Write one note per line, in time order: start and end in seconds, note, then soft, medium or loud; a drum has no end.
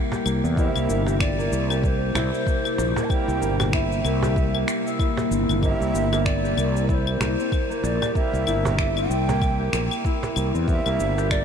0.00 11.45 C3 medium
0.00 11.45 G3 medium
0.00 0.25 A#3 loud
0.00 11.45 A#3 medium
0.00 0.57 E4 loud
0.00 11.45 E4 medium
0.00 0.12 G4 loud
0.12 1.07 G4 loud
0.12 cajon bass medium
0.12 cajon slap medium
0.12 cabasa soft
0.26 0.40 C2 medium
0.26 0.88 A#3 medium
0.26 cabasa medium
0.26 claves medium
0.44 0.68 E2 medium
0.44 cabasa soft
0.56 1.02 G3 loud
0.56 1.03 A#3 loud
0.56 1.03 C4 loud
0.56 2.15 E4 loud
0.56 1.03 E4 medium
0.56 1.03 A#4 loud
0.56 0.69 D#5 medium
0.56 kick loud
0.56 cabasa soft
0.69 1.16 E5 medium
0.75 0.86 C2 loud
0.75 cabasa soft
0.75 claves medium
0.89 1.48 G1 medium
0.89 1.38 A#3 medium
0.89 cabasa medium
1.06 1.17 G3 medium
1.06 1.18 A#3 medium
1.06 1.18 C4 medium
1.06 1.18 E4 medium
1.06 1.70 G4 loud
1.06 1.18 A#4 medium
1.06 cajon slap medium
1.06 cabasa soft
1.20 1.83 D5 loud
1.20 finger snap medium
1.20 kick loud
1.20 cabasa soft
1.20 claves medium
1.38 1.83 A#3 loud
1.38 cabasa soft
1.52 2.11 C2 loud
1.52 cabasa medium
1.70 2.65 G4 loud
1.70 cabasa soft
1.70 claves medium
1.83 2.46 A#3 medium
1.83 3.06 C5 loud
1.83 1.88 D5 medium
1.83 kick loud
1.83 cabasa soft
2.15 2.30 C2 medium
2.15 3.72 E4 loud
2.15 finger snap medium
2.15 cajon bass medium
2.15 cabasa medium
2.15 claves medium
2.34 cabasa soft
2.47 2.96 A#3 medium
2.47 kick loud
2.47 cabasa soft
2.65 3.28 G4 loud
2.65 cabasa soft
2.65 claves medium
2.78 2.93 A#1 loud
2.78 cajon slap medium
2.78 cabasa medium
2.96 3.41 A#3 loud
2.96 cajon bass medium
2.96 cabasa soft
3.04 3.11 A5 medium
3.09 3.55 G3 loud
3.09 3.55 A#3 loud
3.09 3.55 C4 medium
3.09 3.56 E4 medium
3.09 3.56 A#4 loud
3.09 3.72 G5 loud
3.09 kick loud
3.09 cabasa soft
3.09 claves medium
3.28 3.39 C2 loud
3.28 4.22 G4 loud
3.28 cabasa soft
3.41 4.00 G1 loud
3.41 4.04 A#3 medium
3.41 cabasa medium
3.59 3.70 G3 medium
3.59 3.70 A#3 medium
3.59 3.71 C4 medium
3.59 3.71 E4 medium
3.59 3.71 A#4 medium
3.59 cajon bass loud
3.59 cabasa soft
3.59 claves medium
3.73 4.99 E4 medium
3.73 4.95 E5 medium
3.73 finger snap medium
3.73 kick loud
3.73 cabasa soft
3.92 cabasa soft
4.04 4.64 C2 medium
4.04 4.54 A#3 medium
4.04 cajon slap soft
4.04 cabasa medium
4.04 claves medium
4.22 6.43 G4 loud
4.22 cajon bass medium
4.22 cabasa soft
4.36 kick loud
4.36 cabasa soft
4.54 5.62 A#3 loud
4.54 claves medium
4.68 finger snap medium
4.68 cabasa medium
4.86 6.58 E5 loud
4.86 cabasa soft
4.99 6.88 E4 loud
4.99 kick loud
4.99 cabasa soft
4.99 claves medium
5.17 cajon bass medium
5.17 cajon slap medium
5.17 cabasa soft
5.31 5.46 G1 medium
5.31 5.80 C4 medium
5.31 cabasa medium
5.49 5.74 G1 loud
5.49 cabasa soft
5.49 claves medium
5.62 6.07 G3 loud
5.62 6.08 A#3 loud
5.62 6.12 A#3 medium
5.62 6.08 C4 medium
5.62 6.08 E4 medium
5.62 6.09 A#4 loud
5.62 6.27 E5 loud
5.62 kick loud
5.62 cabasa soft
5.62 claves medium
5.81 5.91 C2 loud
5.81 7.38 C4 medium
5.81 cabasa soft
5.94 6.53 G1 loud
5.94 cabasa medium
6.11 6.23 G3 medium
6.11 6.23 A#3 medium
6.11 6.56 A#3 loud
6.11 6.23 C4 medium
6.11 6.23 E4 medium
6.11 6.24 A#4 medium
6.11 cajon slap medium
6.11 cabasa soft
6.11 claves medium
6.25 6.88 D5 medium
6.25 finger snap medium
6.25 kick loud
6.25 cabasa soft
6.44 8.01 G4 loud
6.44 cabasa soft
6.57 7.16 C2 medium
6.57 7.20 A#3 medium
6.57 cabasa medium
6.57 claves medium
6.77 cabasa soft
6.89 8.46 E4 loud
6.89 6.95 D5 medium
6.89 kick loud
6.89 cabasa soft
6.94 7.85 C5 loud
7.07 claves medium
7.20 7.35 C2 medium
7.20 7.69 A#3 medium
7.20 finger snap medium
7.20 cajon bass medium
7.20 cabasa medium
7.38 8.96 C4 medium
7.38 cabasa soft
7.52 kick loud
7.52 cabasa soft
7.52 claves medium
7.70 8.14 A#3 loud
7.70 cabasa soft
7.84 7.98 A#1 loud
7.84 8.15 D5 loud
7.84 cajon slap medium
7.84 cabasa medium
8.01 9.59 G4 loud
8.01 cajon bass medium
8.01 cabasa soft
8.01 claves medium
8.14 8.60 G3 loud
8.14 8.78 A#3 medium
8.14 8.60 A#3 loud
8.14 8.61 C4 loud
8.14 8.61 E4 loud
8.14 8.61 A#4 loud
8.14 9.12 E5 loud
8.14 kick loud
8.14 cabasa soft
8.33 8.44 C2 loud
8.33 cabasa soft
8.46 9.06 G1 medium
8.46 10.04 E4 loud
8.46 cabasa medium
8.46 claves medium
8.64 8.75 G3 medium
8.64 8.76 A#3 medium
8.64 8.76 C4 medium
8.64 8.76 E4 medium
8.64 8.76 A#4 medium
8.64 cajon bass medium
8.64 cabasa soft
8.78 9.28 A#3 medium
8.78 finger snap medium
8.78 kick medium
8.78 cabasa soft
8.96 10.54 C4 medium
8.96 cabasa soft
8.96 claves medium
9.10 9.69 C2 medium
9.10 9.73 G5 loud
9.10 cajon slap soft
9.10 cabasa medium
9.28 9.73 A#3 loud
9.28 cajon bass medium
9.28 cabasa soft
9.42 kick loud
9.42 cabasa soft
9.42 claves medium
9.60 11.17 G4 loud
9.73 9.88 A#1 loud
9.73 10.36 A#3 medium
9.73 finger snap medium
9.73 cabasa medium
9.91 cabasa soft
9.91 claves medium
10.05 11.45 E4 loud
10.05 kick loud
10.05 cabasa soft
10.23 cajon bass medium
10.23 cajon slap medium
10.23 cabasa soft
10.36 10.51 C2 medium
10.36 10.86 A#3 medium
10.36 cabasa medium
10.36 claves medium
10.54 10.79 E2 medium
10.54 11.45 C4 medium
10.54 cabasa soft
10.67 11.13 G3 loud
10.67 11.13 A#3 loud
10.67 11.13 C4 loud
10.67 11.14 E4 medium
10.67 11.14 A#4 loud
10.67 11.33 E5 loud
10.67 kick loud
10.67 cabasa soft
10.86 10.97 C2 loud
10.86 11.31 A#3 loud
10.86 cabasa soft
10.86 claves medium
10.99 11.45 G1 loud
10.99 cabasa medium
11.17 11.28 G3 medium
11.17 11.28 A#3 medium
11.17 11.28 C4 medium
11.17 11.29 E4 medium
11.17 11.45 G4 loud
11.17 11.29 A#4 medium
11.17 cajon slap medium
11.17 cabasa soft
11.31 11.45 A#3 medium
11.31 11.45 D5 loud
11.31 finger snap medium
11.31 kick loud
11.31 cabasa soft
11.31 claves medium